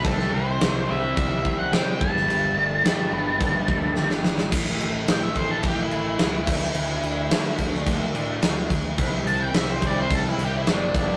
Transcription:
0.02 fingered electric bass C2, overdriven electric guitar C3 G3 C4, lead electric guitar A4, kick, crash
0.19 snare
0.32 fingered electric bass C2, overdriven electric guitar C3, lead electric guitar C5
0.60 fingered electric bass C2, overdriven electric guitar C4, snare, crash
0.86 overdriven electric guitar G3 C4 E4
0.91 fingered electric bass C2, overdriven electric guitar C3, lead electric guitar E5
1.16 fingered electric bass C2, overdriven electric guitar G3, lead electric guitar E5, kick, crash
1.45 fingered electric bass C2, overdriven electric guitar C3, kick
1.59 lead electric guitar F#5
1.71 overdriven electric guitar C3 G3 C4, fingered electric bass C3, lead electric guitar G5, snare, crash
1.75 overdriven electric guitar C4
2.00 fingered electric bass G1, overdriven electric guitar G2 D3 G3, lead electric guitar A5, kick
2.04 overdriven electric guitar G3
2.17 snare
2.27 fingered electric bass G1, overdriven electric guitar G3, crash
2.56 fingered electric bass G1, overdriven electric guitar A3
2.83 fingered electric bass G2, overdriven electric guitar G2 D3 G4, snare, crash
2.87 overdriven electric guitar G3
3.13 fingered electric bass G1, overdriven electric guitar B4
3.40 fingered electric bass G1, overdriven electric guitar D4, kick, crash
3.67 fingered electric bass D2, overdriven electric guitar D3 G3 A3, kick
3.72 overdriven electric guitar G2
3.96 fingered electric bass G1, overdriven electric guitar G4, snare
4.10 snare
4.24 fingered electric bass G1, overdriven electric guitar D4, snare
4.38 snare
4.51 fingered electric bass A1, overdriven electric guitar A2 E3 A3, kick, crash
4.81 fingered electric bass A1, crash
5.08 fingered electric bass A1, snare, crash
5.12 lead electric guitar G5
5.23 lead electric guitar E5
5.35 fingered electric bass A1, overdriven electric guitar E3 A3, lead electric guitar C5, kick, crash
5.39 overdriven electric guitar A2
5.51 lead electric guitar A4
5.63 fingered electric bass A1, lead electric guitar G4, kick, crash
5.83 lead electric guitar E4
5.91 fingered electric bass A1, lead electric guitar E4, crash
6.18 fingered electric bass C#2, overdriven electric guitar A2 E3, snare, crash
6.23 overdriven electric guitar A3
6.44 fingered electric bass D2, overdriven electric guitar D3 A3, kick, crash
6.49 overdriven electric guitar D4
6.74 fingered electric bass D2, crash
7.02 fingered electric bass D2, crash
7.30 overdriven electric guitar D3 A3, fingered electric bass D3, snare, crash
7.35 overdriven electric guitar D4
7.58 fingered electric bass D2, kick, crash
7.74 snare
7.86 fingered electric bass D2, kick, crash
8.14 fingered electric bass A2, overdriven electric guitar A3 D4, crash
8.18 overdriven electric guitar D3
8.42 fingered electric bass D2, snare, crash
8.70 fingered electric bass D2, kick, crash
8.98 fingered electric bass C2, overdriven electric guitar C3 G3 C4, kick, crash
9.26 fingered electric bass C2, lead electric guitar A5, crash
9.42 lead electric guitar G5
9.53 fingered electric bass C2, lead electric guitar E5, snare, crash
9.71 lead electric guitar C5
9.81 fingered electric bass C2, overdriven electric guitar C3 G3 C4, kick, crash
9.87 lead electric guitar D5
10.00 lead electric guitar C5
10.10 fingered electric bass C2, kick, crash
10.14 lead electric guitar A4
10.29 lead electric guitar E4
10.37 fingered electric bass C2, crash
10.44 lead electric guitar G4
10.57 lead electric guitar E4
10.65 fingered electric bass F#1, overdriven electric guitar C3 G3, snare, crash
10.70 overdriven electric guitar C4, lead electric guitar D4
10.92 fingered electric bass G1, overdriven electric guitar G2 D3, kick, crash
10.97 overdriven electric guitar G3, lead electric guitar D4

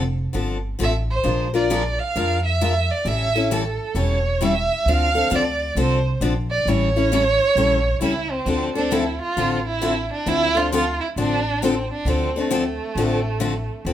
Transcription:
Already playing: upright bass F1
0.33 upright bass G1, steel-string acoustic guitar D3 F3 C4 D4 A4
0.79 upright bass A1, steel-string acoustic guitar D3 F3 C4 D4 A4
0.83 violin E5
1.11 violin C5
1.24 upright bass A#1, steel-string acoustic guitar F3 G#3 D4 F4 A#4
1.54 steel-string acoustic guitar D4 F4 A#4, violin D5
1.70 steel-string acoustic guitar F3 G#3 D4 F4 A#4
1.99 violin F5
2.16 upright bass F2, steel-string acoustic guitar F3 G#3 D4 F4 A#4
2.45 violin E5
2.61 steel-string acoustic guitar F3 G#3 D4 F4 A#4
2.91 violin D5
3.05 upright bass A1, steel-string acoustic guitar E3 G3 C#4 E4 A4, violin E5
3.35 steel-string acoustic guitar C#4 E4 A4
3.51 steel-string acoustic guitar E3 G3 C#4 E4 A4, violin A4
3.95 upright bass E1, steel-string acoustic guitar E3 G3 C#4 E4 A4
3.99 violin C#5
4.41 steel-string acoustic guitar E3 G3 C#4 E4 A4, violin E5
4.86 upright bass D2, steel-string acoustic guitar D3 F3 C4 D4 A4, violin F5
5.15 steel-string acoustic guitar C4 D4 A4
5.30 upright bass D2, steel-string acoustic guitar D3 F3 C4 D4 A4
5.35 violin D5
5.75 upright bass C2, steel-string acoustic guitar D3 F3 C4 D4 A4
5.80 violin C5
6.21 upright bass A#1, steel-string acoustic guitar D3 F3 C4 D4 A4
6.51 violin D5
6.65 upright bass A1, steel-string acoustic guitar E3 G3 C#4 E4 A4, violin C#5
6.96 steel-string acoustic guitar C#4 E4 A4
7.12 steel-string acoustic guitar E3 G3 C#4 E4 A4
7.55 upright bass A#1, steel-string acoustic guitar E3 G3 C#4 E4 A4
8.01 upright bass C#2, steel-string acoustic guitar E3 G3 C#4 E4 A4, violin E4
8.31 violin C4
8.46 upright bass D2, steel-string acoustic guitar D3 F3 C4 D4 A4
8.75 steel-string acoustic guitar C4 D4 A4, violin D4
8.91 steel-string acoustic guitar D3 F3 C4 D4 A4, violin E4
9.21 violin F4
9.37 upright bass A1, steel-string acoustic guitar D3 F3 C4 D4 A4
9.67 violin E4
9.82 steel-string acoustic guitar D3 F3 C4 D4 A4
10.13 violin D4
10.26 upright bass D2, steel-string acoustic guitar D3 F3 C4 D4 A4, violin E4
10.55 steel-string acoustic guitar C4 D4 A4, violin F4
10.72 steel-string acoustic guitar D3 F3 C4 D4 A4, violin F4
11.01 violin E4
11.16 upright bass A1, steel-string acoustic guitar D3 F3 C4 D4 A4, violin D4
11.62 steel-string acoustic guitar D3 F3 C4 D4 A4, violin C4
11.93 violin D4
12.05 upright bass D2, steel-string acoustic guitar D3 F3 C4 D4 A4
12.09 violin C4
12.36 violin A3, steel-string acoustic guitar C4 D4 A4
12.51 steel-string acoustic guitar D3 F3 C4 D4 A4
12.95 upright bass A1, steel-string acoustic guitar D3 F3 C4 D4 A4
13.40 steel-string acoustic guitar D3 F3 C4 D4 A4
13.85 upright bass D2, steel-string acoustic guitar D3 F3 C4 D4 A4

